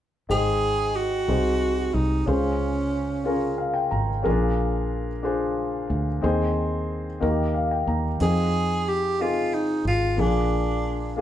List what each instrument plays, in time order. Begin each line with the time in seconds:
0.29 fingered electric bass G#1, upright piano G#2 D#4 G#4 C5 G5, tenor saxophone G#4
0.96 tenor saxophone F#4
1.27 fingered electric bass C2, upright piano C3 D#4 F#4 G#4 C5
1.94 fingered electric bass C2, tenor saxophone D#4
2.26 fingered electric bass C#2, upright piano C#3 C#4 F4 G#4 C5, tenor saxophone C#4
3.24 upright piano C#4 F4 G#4 A#4
3.58 upright piano F5
3.74 upright piano G5
3.91 fingered electric bass G#1, upright piano A#5
4.23 fingered electric bass A#1, upright piano A#2 C#4 F4 G#4 A#4
4.29 upright piano D4
5.23 upright piano D4 F4 G#4 C5
5.90 fingered electric bass D2
6.21 fingered electric bass D#2, upright piano D#3 C4 D#4 G#4 C5
7.20 fingered electric bass D#2, upright piano D#3 A#3 D#4 F#4 A#4
7.28 upright piano G4
7.54 upright piano F5
7.71 upright piano G5
7.87 fingered electric bass D#2, upright piano A#5
8.20 fingered electric bass F2, upright piano C4 D#4 F4 G#4, tenor saxophone G#4
8.88 tenor saxophone G4
9.20 upright piano C4 D#4 F4 G#4, tenor saxophone F4
9.54 tenor saxophone D#4
9.85 fingered electric bass G#1, tenor saxophone F4
10.17 fingered electric bass A#1, upright piano A#2 A#3 D4 F4 G#4, tenor saxophone D4
11.17 upright piano A#3 D4 F4